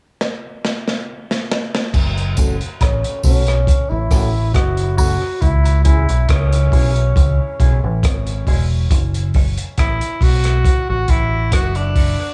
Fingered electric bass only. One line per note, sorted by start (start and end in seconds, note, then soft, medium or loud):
1.94 2.34 F#1 loud
2.38 2.59 F#1 medium
2.81 3.02 A1 medium
3.24 3.64 B1 medium
3.91 4.10 A1 medium
4.11 4.52 A1 medium
4.55 5.17 F#1 loud
5.42 6.05 C#2 medium
6.09 6.28 B1 medium
6.30 6.70 C#2 medium
6.73 7.13 B1 medium
7.17 7.38 C#2 medium
7.60 7.81 B1 medium
7.84 8.02 A1 loud
8.04 8.44 G#1 loud
8.47 8.87 E1 medium
8.91 9.31 F#1 medium
9.35 9.56 F#1 medium
9.78 9.99 A1 loud
10.21 10.62 B1 medium
10.90 11.08 A1 medium
11.09 11.49 A1 medium
11.52 12.15 F#1 loud